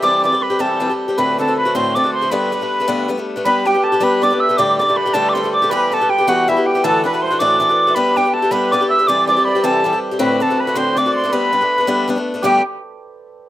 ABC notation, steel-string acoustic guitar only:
X:1
M:6/8
L:1/16
Q:3/8=107
K:G
V:1 name="Steel-string acoustic guitar"
[C,E,G,CG]2 [E,G,CG] [G,CG]2 [G,CG] [C,E,G,CG]2 [E,G,CG] [G,CG]2 [G,CG] | [D,,A,,D,A,CF]2 [D,A,CF] [D,A,CF]2 [D,A,CF] [D,,A,,D,A,CF]2 [D,A,CF] [D,A,CF]2 [D,A,CF] | [G,,D,G,A,B,D]2 [G,A,D] [G,A,B,D]2 [G,A,B,D] [G,,D,G,A,B,D]2 [G,A,B,D] [G,A,B,D]2 [G,A,B,D] | [G,B,DG]2 [G,B,DG] [B,DG]2 [B,DG] [G,B,DG]2 [G,B,DG] [B,DG]2 [B,DG] |
[D,,A,,D,G,A,G]2 [D,G,A,G] [D,G,A,G]2 [D,G,A,G] [D,,A,,D,G,A,G]2 [D,G,A,G] [D,G,A,G]2 [D,G,A,G] | [E,G,B,G]2 [G,B,G] [G,B,G]2 [G,B,G] [E,G,B,G]2 [E,G,B,G] [G,B,G]2 [G,B,G] | [D,,A,,E,A,DF]2 [E,A,DF] [E,A,DF]2 [E,A,DF] [D,,A,,E,A,DF]2 [E,A,DF] [E,A,DF]2 [E,A,DF] | [G,B,DG]2 [G,B,DG] [B,DG]2 [B,DG] [G,B,DG]2 [G,B,DG] [B,DG]2 [B,DG] |
[C,E,G,CG]2 [E,G,CG] [G,CG]2 [G,CG] [C,E,G,CG]2 [E,G,CG] [G,CG]2 [G,CG] | [D,,A,,D,A,CF]2 [D,CF] [D,A,CF]2 [D,A,CF] [D,,A,,D,A,CF]2 [D,A,CF] [D,A,CF]2 [D,A,CF] | [G,A,B,D]2 [G,A,B,D] [A,B,D]2 [A,B,D] [G,A,B,D]2 [G,A,B,D] [A,B,D]2 [A,B,D] | [G,,D,G,A,B,D]2 z8 z2 |]